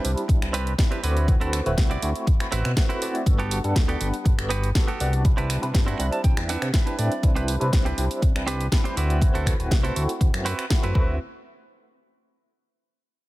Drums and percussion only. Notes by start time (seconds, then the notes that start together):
0.05 open hi-hat
0.17 closed hi-hat
0.29 kick, closed hi-hat
0.42 finger snap, closed hi-hat
0.54 open hi-hat
0.67 closed hi-hat
0.78 kick, snare, closed hi-hat
0.92 closed hi-hat
1.04 open hi-hat
1.17 closed hi-hat
1.28 kick, closed hi-hat
1.41 closed hi-hat
1.53 finger snap, open hi-hat
1.66 closed hi-hat
1.78 kick, snare, closed hi-hat
1.91 closed hi-hat
2.02 open hi-hat
2.16 closed hi-hat
2.27 kick, closed hi-hat
2.40 finger snap, closed hi-hat
2.52 open hi-hat
2.65 finger snap, closed hi-hat
2.77 kick, snare, closed hi-hat
2.90 closed hi-hat
3.02 open hi-hat
3.15 closed hi-hat
3.26 kick, closed hi-hat
3.40 closed hi-hat
3.51 open hi-hat
3.64 closed hi-hat
3.76 kick, snare, closed hi-hat
3.89 closed hi-hat
4.01 open hi-hat
4.14 closed hi-hat
4.25 kick, closed hi-hat
4.39 finger snap, closed hi-hat
4.50 open hi-hat
4.64 closed hi-hat
4.75 kick, snare, closed hi-hat
4.88 closed hi-hat
5.00 open hi-hat
5.13 closed hi-hat
5.25 kick, closed hi-hat
5.38 closed hi-hat
5.50 finger snap, open hi-hat
5.63 closed hi-hat
5.74 kick, snare, closed hi-hat
5.88 closed hi-hat
6.00 open hi-hat
6.13 closed hi-hat
6.24 kick, closed hi-hat
6.37 finger snap, closed hi-hat
6.49 open hi-hat
6.62 finger snap, closed hi-hat
6.74 kick, snare, closed hi-hat
6.87 closed hi-hat
6.99 open hi-hat
7.12 closed hi-hat
7.23 kick, closed hi-hat
7.36 closed hi-hat
7.48 open hi-hat
7.61 closed hi-hat
7.73 kick, snare, closed hi-hat
7.86 closed hi-hat
7.98 open hi-hat
8.11 closed hi-hat
8.22 kick, closed hi-hat
8.36 finger snap, closed hi-hat
8.48 open hi-hat
8.61 closed hi-hat
8.72 kick, snare, closed hi-hat
8.85 closed hi-hat
8.97 open hi-hat
9.10 closed hi-hat
9.22 kick, closed hi-hat
9.35 closed hi-hat
9.46 finger snap, kick, open hi-hat
9.60 closed hi-hat
9.71 kick, snare, closed hi-hat
9.84 closed hi-hat
9.96 open hi-hat
10.09 closed hi-hat
10.21 kick, closed hi-hat
10.34 finger snap, closed hi-hat
10.46 open hi-hat
10.59 finger snap, closed hi-hat
10.70 kick, snare, closed hi-hat
10.83 closed hi-hat
10.95 kick